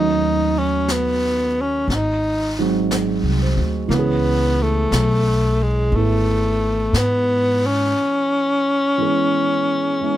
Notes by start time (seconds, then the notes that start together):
Already playing: D#2 D#3 F#3 A3 C#4 D#4 F#4
0.58 C#4
0.88 B3, brush sweep, snare, hi-hat pedal
1.61 C#4
1.88 G#1 C#4, brush sweep, snare
1.95 D#4
2.59 F#3 G#3 C4 D#4 F#4
2.91 G#4, brush sweep, snare, hi-hat pedal
3.23 C2
3.42 C5
3.57 D2
3.88 C#2 E3 A#3, brush sweep, snare
3.93 B3 C#4
3.99 G#4
4.62 A3
4.91 B1, brush sweep, snare, hi-hat pedal
5.62 G#3
5.92 G#1 A3 B3, brush sweep
5.96 E4
6.93 G#2 B3, brush sweep, snare, hi-hat pedal
7.66 C#4
8.98 E3 G#3 B3 C#4
9.02 G#4
10.01 G#3 B3 E4